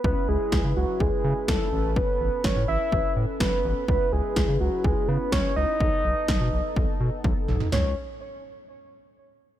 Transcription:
<<
  \new Staff \with { instrumentName = "Soft synth lead" } { \time 4/4 \key cis \minor \tempo 4 = 125 b'8 gis'4 fis'8 gis'4 a'4 | b'4 cis''8 e''4 r8 b'4 | b'8 gis'4 fis'8 gis'8 b'8 cis''8 dis''8~ | dis''2. r4 |
cis''8 r2. r8 | }
  \new Staff \with { instrumentName = "Analog polysynth" } { \time 4/4 \key cis \minor <cis' e' b'>2.~ <cis' e' b'>8 <cis' a' b'>8~ | <cis' a' b'>1 | <cis' e' b'>1 | <b dis' a'>1 |
r1 | }
  \new Staff \with { instrumentName = "Analog synth bass" } { \clef bass \time 4/4 \key cis \minor cis,16 r16 cis,16 r16 cis,16 cis16 cis,16 r16 cis,16 r16 cis16 r16 cis,16 r16 a,,8~ | a,,16 r16 a,,16 r16 a,,16 a,16 a,,16 r16 a,,16 r16 a,16 r16 a,,16 r16 a,,16 r16 | cis,16 r16 cis,16 r16 cis,16 cis16 cis,16 r16 cis,16 r16 cis16 r16 cis,16 r16 cis,16 r16 | b,,16 r16 b,,16 r16 b,,16 b,16 b,,16 r16 b,,16 r16 b,16 r16 b,,16 r16 b,,16 r16 |
cis,8 r2. r8 | }
  \new DrumStaff \with { instrumentName = "Drums" } \drummode { \time 4/4 bd4 <bd sn>4 bd4 <bd sn>4 | bd4 <bd sn>4 bd4 <bd sn>4 | bd4 <bd sn>4 bd4 <bd sn>4 | bd4 <bd sn>4 bd4 <bd tommh>8 toml16 tomfh16 |
<sn tomfh>4 r4 r4 r4 | }
>>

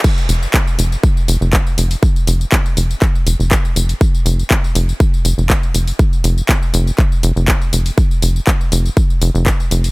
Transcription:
<<
  \new Staff \with { instrumentName = "Analog synth bass" } { \clef bass \time 4/4 \key c \minor \tempo 4 = 121 r8 f,,16 r8. f,,16 r8. f,,16 f,,16 r8 f,,16 r16 | r8 f,,16 r8. f,,16 r8. f,,16 f,,16 r8 f,,16 r16 | r8 f,,16 r8. f,,16 r8. f,,16 f,,16 r8 f,,16 r16 | r8 f,,16 r8. f,,16 r8. f,,16 f,,16 r8 f,,16 r16 |
r8 f,,16 r8. f,,16 r8. f,,16 f,,16 r8 f,,16 r16 | }
  \new DrumStaff \with { instrumentName = "Drums" } \drummode { \time 4/4 <cymc bd tamb>16 tamb16 <hho tamb>16 tamb16 <hc bd tamb>16 tamb16 <hho tamb>16 tamb16 <bd tamb>16 tamb16 <hho tamb>16 tamb16 <hc bd tamb>16 tamb16 <hho tamb>16 <hho tamb>16 | <bd tamb>16 tamb16 <hho tamb>16 tamb16 <hc bd tamb>16 tamb16 <hho tamb>16 tamb16 <hc bd tamb>16 tamb16 <hho tamb>16 tamb16 <hc bd tamb>16 tamb16 <hho tamb>16 <hho tamb>16 | <bd tamb>16 tamb16 <hho tamb>16 tamb16 <hc bd tamb>16 tamb16 <hho tamb>16 tamb16 <bd tamb>16 tamb16 <hho tamb>16 tamb16 <hc bd tamb>16 tamb16 <hho tamb>16 <hho tamb>16 | <bd tamb>16 tamb16 <hho tamb>16 tamb16 <hc bd tamb>16 tamb16 <hho tamb>16 tamb16 <hc bd tamb>16 tamb16 <hho tamb>16 tamb16 <hc bd tamb>16 tamb16 <hho tamb>16 <hho tamb>16 |
<bd tamb>16 tamb16 <hho tamb>16 tamb16 <hc bd tamb>16 tamb16 <hho tamb>16 tamb16 <bd tamb>16 tamb16 <hho tamb>16 tamb16 <hc bd tamb>16 tamb16 <hho tamb>16 <hho tamb>16 | }
>>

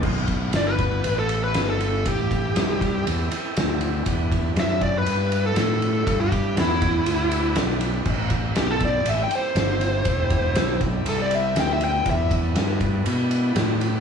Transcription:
<<
  \new Staff \with { instrumentName = "Lead electric guitar" } { \time 4/4 \key e \minor \tempo 4 = 120 r4 d''16 b'4 a'8 b'8 a'8. | g'2 r2 | r4 e''8 d''16 b'4 a'4~ a'16~ | a'16 g'8. e'2 r4 |
r4 g'16 a'16 d''8 e''16 g''16 c''4.~ | c''4. r8 a'16 d''16 e''8 g''16 e''16 g''8 | e''8 r2. r8 | }
  \new Staff \with { instrumentName = "Tonewheel organ" } { \time 4/4 \key e \minor \tuplet 3/2 { <dis' f' gis' c''>8 <d' e' g' b'>4~ } <d' e' g' b'>2. | <c' e' g' a'>1 | <d' e' g' b'>1~ | <d' e' g' b'>1 |
<c' e' g' a'>1~ | <c' e' g' a'>1 | <d' e' g' b'>1 | }
  \new Staff \with { instrumentName = "Fingered electric bass" } { \clef bass \time 4/4 \key e \minor b,,4 g,,4 a,,4 g,,4 | a,,4 c,4 e,8 r8 d,4 | e,4 fis,4 g,4 a,4 | g,4 e,4 d,4 b,,4 |
a,,4 b,,4 a,,8 r8 g,,4 | e,,4 b,,4 c,4 d,4 | e,4 g,4 b,4 a,4 | }
  \new DrumStaff \with { instrumentName = "Drums" } \drummode { \time 4/4 <cymc bd>8 <bd cymr>8 <cymr sn>8 <bd cymr>8 cymr8 cymr8 <cymr sn>8 cymr8 | <bd cymr>8 <bd cymr>8 <cymr sn>8 <bd cymr>8 cymr8 cymr8 <cymr sn>8 cymr8 | <bd cymr>8 <bd cymr>8 <cymr sn>8 <bd cymr>8 cymr8 cymr8 <cymr sn>8 cymr8 | <bd cymr>8 <bd cymr>8 <cymr sn>8 <bd cymr>8 cymr8 cymr8 <cymr sn>8 cymr8 |
<cymc bd>8 <bd cymr>8 <cymr sn>8 <bd cymr>8 cymr8 cymr8 <cymr sn>8 cymr8 | <bd cymr>8 <bd cymr>8 <cymr sn>8 <bd cymr>8 cymr8 cymr8 <cymr sn>8 cymr8 | <bd cymr>8 <bd cymr>8 <cymr sn>8 <bd cymr>8 cymr8 cymr8 <cymr sn>8 cymr8 | }
>>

